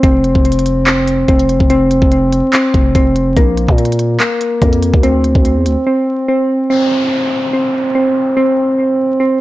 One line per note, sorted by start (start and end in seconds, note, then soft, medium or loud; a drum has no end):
0.03 0.34 F1 loud
0.03 0.85 C4 loud
0.03 kick loud
0.03 closed hi-hat medium
0.24 closed hi-hat medium
0.35 1.25 F1 loud
0.35 kick medium
0.45 closed hi-hat medium
0.52 closed hi-hat medium
0.59 closed hi-hat medium
0.66 closed hi-hat medium
0.87 1.27 C4 medium
0.87 clap loud
0.87 closed hi-hat medium
1.07 closed hi-hat medium
1.28 1.59 F1 loud
1.28 1.69 C4 medium
1.28 kick loud
1.28 closed hi-hat medium
1.39 closed hi-hat medium
1.49 closed hi-hat medium
1.60 2.00 F1 loud
1.60 kick medium
1.70 2.52 C4 loud
1.70 closed hi-hat medium
1.91 closed hi-hat medium
2.02 2.42 F1 loud
2.02 kick medium
2.12 closed hi-hat medium
2.32 closed hi-hat medium
2.53 2.94 C4 medium
2.53 clap loud
2.53 closed hi-hat medium
2.74 2.94 F1 loud
2.74 kick loud
2.74 closed hi-hat medium
2.95 3.35 F1 loud
2.95 3.37 C4 medium
2.95 kick loud
2.95 closed hi-hat medium
3.16 closed hi-hat medium
3.37 3.67 A#1 loud
3.37 4.19 A#3 medium
3.37 kick loud
3.37 closed hi-hat medium
3.57 closed hi-hat medium
3.68 4.18 A#2 loud
3.68 kick medium
3.78 closed hi-hat medium
3.85 closed hi-hat medium
3.92 closed hi-hat medium
3.99 closed hi-hat medium
4.20 4.60 A#3 medium
4.20 clap loud
4.20 closed hi-hat medium
4.41 closed hi-hat medium
4.62 4.92 F2 loud
4.62 5.03 A#3 medium
4.62 kick medium
4.62 closed hi-hat medium
4.73 closed hi-hat medium
4.82 closed hi-hat medium
4.94 5.34 D2 loud
4.94 kick medium
5.03 5.85 C4 medium
5.03 closed hi-hat medium
5.24 closed hi-hat medium
5.35 5.57 D2 loud
5.35 kick medium
5.45 closed hi-hat medium
5.56 5.67 E2 loud
5.66 5.76 D2 loud
5.66 closed hi-hat medium
5.87 6.27 C4 medium
6.28 6.69 C4 medium
6.70 7.52 C4 loud
6.70 downlifter medium
7.53 7.94 C4 medium
7.95 8.35 C4 medium
8.37 9.19 C4 loud
9.20 9.41 C4 medium